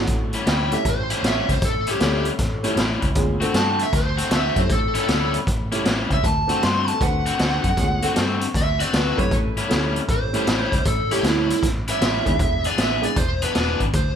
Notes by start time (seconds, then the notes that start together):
Already playing: A3 C#4 E4 F#4
0.07 A1, kick, closed hi-hat
0.33 A2 G3 C#4 E4, closed hi-hat
0.47 D2 A2 G3 C#4 E4 G5, snare, closed hi-hat
0.71 A3 C#4 E4 G4 A4 E5, closed hi-hat
0.85 A1, kick, closed hi-hat
0.89 C5
1.10 A2 G3 C#4 E4, closed hi-hat
1.23 A1 A2 G3 C#4 E4, snare, closed hi-hat
1.28 E5
1.49 C#2 C5, kick, closed hi-hat
1.62 A1 A4, kick, closed hi-hat
1.87 A2 G3 C#4 E4, closed hi-hat
1.91 G4
2.00 D2 A2 G3 A3 C#4 E4 G4 A4, snare, closed hi-hat
2.25 closed hi-hat
2.39 A1, kick, snare, closed hi-hat
2.63 A2 G3 A3 C#4 E4 G4 A4, closed hi-hat
2.76 A1 A2 G3 C#4 E4, snare, closed hi-hat
3.02 C#2, kick, closed hi-hat
3.15 D2 G#3 B3 C#4 F4 G#4, kick, closed hi-hat
3.41 D3 A3 C4 D4 F#4 A4, closed hi-hat
3.54 G2 D3 A3 C4 F#4 A5, snare, closed hi-hat
3.79 E5, closed hi-hat
3.93 D2 C5, kick, snare, closed hi-hat
4.17 D3 A3 C4 F#4, closed hi-hat
4.30 D2 D3 A3 C4 F#4, snare, closed hi-hat
4.36 E5
4.56 F#2 A3 C#4 E4 G4 A4 C5, kick, closed hi-hat
4.69 A1 A4, kick, closed hi-hat
4.94 A2 G3 C#4 E4, closed hi-hat
4.99 A4
5.08 D2 A2 G3 C#4 E4, snare, closed hi-hat
5.34 closed hi-hat
5.47 A1, kick, closed hi-hat
5.71 A2 G3 A3 C#4 E4 G4 A4, closed hi-hat
5.85 A1 A2 G3 C#4 E4, snare, closed hi-hat
6.10 C#2 E5, kick, closed hi-hat
6.24 D2 A5, kick, closed hi-hat
6.47 D3 A3 C4 D4 F#4 A4, closed hi-hat
6.62 G2 D3 A3 C4 F#4 C6, snare, closed hi-hat
6.88 A5, closed hi-hat
7.00 D2 A3 C4 D4 F#4 B4 F#5, kick, closed hi-hat
7.26 D3 A3 C4 F#4, closed hi-hat
7.39 D2 D3 A3 C4 F#4, snare, closed hi-hat
7.64 F#2, kick, closed hi-hat
7.77 D2 G#3 B3 C#4 F4 G#4, kick, closed hi-hat
8.02 D3 A3 C4 D4 F#4 A4, closed hi-hat
8.16 G2 D3 A3 C4 F#4, snare, closed hi-hat
8.41 closed hi-hat
8.54 D2 E5, kick, snare, closed hi-hat
8.80 D3 A3 C4 F#4 D5, closed hi-hat
8.93 D2 D3 A3 C4 F#4 B4, snare, closed hi-hat
9.17 F#2 A3 C#4 E4 G4 B4 C#5, kick, closed hi-hat
9.31 A1, kick, closed hi-hat
9.57 A2 G3 C#4 E4, closed hi-hat
9.68 D2 A2 G3 A3 C#4 E4 G4 A4, snare, closed hi-hat
9.72 C#4 E4
9.96 closed hi-hat
10.09 A1 C5, kick, closed hi-hat
10.33 A2 G3 A3 C#4 E4 G4 A4, closed hi-hat
10.47 A1 A2 G3 C#4 E4, snare, closed hi-hat
10.72 C#2, kick, closed hi-hat
10.85 A1 A4, kick, closed hi-hat
11.11 A2 G3 A3 C#4 E4 G4 A4, closed hi-hat
11.23 D2 A2 G3 C#4 E4, snare, closed hi-hat
11.50 E4, closed hi-hat
11.63 A1, kick, snare, closed hi-hat
11.88 A2 G3 C#4 E4 E5, closed hi-hat
12.01 A1 A2 G3 C#4 E4, snare, closed hi-hat
12.25 D#2 G#3 B3 D4 E4 G#4, kick, closed hi-hat
12.39 E1, kick, closed hi-hat
12.64 E3 B3 D4 G#4 D5, closed hi-hat
12.78 A1 E3 B3 D4 G#4 E5, snare, closed hi-hat
13.02 G#3 B3 D4 E4 G#4 D5, closed hi-hat
13.16 E1 C5, kick, closed hi-hat
13.42 E3 B3 D4 G#4 B4, closed hi-hat
13.55 E1 E3 B3 D4 G#4, snare, closed hi-hat
13.80 G#1, kick, closed hi-hat
13.93 D2 C5, kick, closed hi-hat